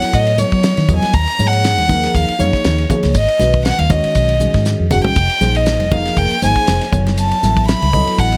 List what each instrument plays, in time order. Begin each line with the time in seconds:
Already playing: tine electric piano F#3 B3 E4 A4 C#5, violin F#5
0.02 muted fingered electric bass stroke, snare, ride
0.13 fingered electric bass A2, violin D#5, kick, hi-hat pedal, ride
0.27 ride
0.38 tine electric piano F#3 B3 E4 A4 C#5, violin C#5, hi-hat pedal, high conga
0.52 fingered electric bass F#3, kick, ride
0.63 snare, hi-hat pedal, ride
0.77 fingered electric bass D#3, snare, ride
0.88 fingered electric bass E2, tine electric piano F#3 B3 E4 A4 D#5, kick, hi-hat pedal, low conga
0.97 violin G#5
1.02 muted fingered electric bass stroke, snare, ride, high conga
1.13 fingered electric bass D#2, violin A#5, kick, hi-hat pedal, ride
1.27 ride
1.39 fingered electric bass G#2, tine electric piano F3 A#3 D#4 G#4 C#5, hi-hat pedal, high conga
1.47 violin F#5
1.53 ride
1.64 snare, hi-hat pedal, ride
1.78 fingered electric bass D#2, ride, high conga
1.88 tine electric piano F3 A#3 D#4 G#4 A#4, kick, hi-hat pedal, high conga, low conga
2.03 snare, ride
2.15 fingered electric bass D#2, violin F5, kick, hi-hat pedal, ride
2.28 muted fingered electric bass stroke, ride
2.39 fingered electric bass F#2, tine electric piano F3 A#3 D#4 G#4 C#5, violin C#5, hi-hat pedal, high conga
2.53 kick, snare, ride
2.64 fingered electric bass D#2, snare, hi-hat pedal, ride
2.78 ride
2.89 tine electric piano F3 A#3 D#4 G#4 C#5, kick, hi-hat pedal, low conga
3.03 fingered electric bass C#2, snare, ride, high conga
3.14 fingered electric bass G#1, violin D#5, kick, hi-hat pedal, ride
3.28 ride
3.39 fingered electric bass B1, tine electric piano D#3 G#3 C#4 F#4 B4, snare, hi-hat pedal, high conga
3.53 kick, ride
3.65 violin F#5, snare, hi-hat pedal, ride
3.79 fingered electric bass D#2, violin F5, ride, high conga
3.89 tine electric piano D#3 G#3 C#4 F#4 C#5, violin D#5, kick, hi-hat pedal, high conga, low conga
4.04 muted fingered electric bass stroke, ride
4.15 fingered electric bass B1, kick, hi-hat pedal, ride
4.29 ride
4.40 tine electric piano D#3 G#3 C#4 F#4 G#4, hi-hat pedal, high conga
4.54 fingered electric bass G#2, kick, snare, ride
4.65 snare, hi-hat pedal
4.80 fingered electric bass F2
4.90 fingered electric bass F#1, tine electric piano D#3 G#3 C#4 F#4 G#4, violin F#5, hi-hat pedal, mid tom, low conga
5.05 violin G5, floor tom, high conga
5.16 fingered electric bass F1, kick, hi-hat pedal, ride
5.30 ride
5.41 fingered electric bass A#1, tine electric piano F3 A#3 D#4 G#4 C5, snare, hi-hat pedal, high conga
5.55 violin D#5, ride
5.66 snare, hi-hat pedal, ride
5.80 fingered electric bass F1, ride, high conga
5.91 tine electric piano F3 A#3 D#4 G#4 A#4, violin F5, kick, hi-hat pedal, high conga, low conga
6.05 snare, ride
6.17 fingered electric bass F1, violin G5, kick, hi-hat pedal, ride
6.30 ride
6.42 fingered electric bass G#1, tine electric piano F3 A#3 D#4 G#4 C5, violin G#5, hi-hat pedal, high conga
6.55 kick, ride
6.67 fingered electric bass F1, snare, hi-hat pedal, ride
6.81 snare, ride
6.92 fingered electric bass F#1, tine electric piano F#3 B3 E4 A4 C#5, kick, hi-hat pedal, low conga
7.07 snare, ride, high conga
7.17 violin A5, hi-hat pedal, ride
7.31 ride
7.43 fingered electric bass A1, tine electric piano F#3 B3 E4 A4 E5, snare, hi-hat pedal, high conga
7.57 kick, ride
7.68 violin B5, snare, hi-hat pedal, ride
7.82 fingered electric bass C#2, ride, high conga
7.93 tine electric piano F#3 B3 E4 A4 D#5, kick, hi-hat pedal, high conga, low conga
8.07 muted fingered electric bass stroke, ride
8.18 fingered electric bass A1, violin F#5, kick, hi-hat pedal, ride
8.32 ride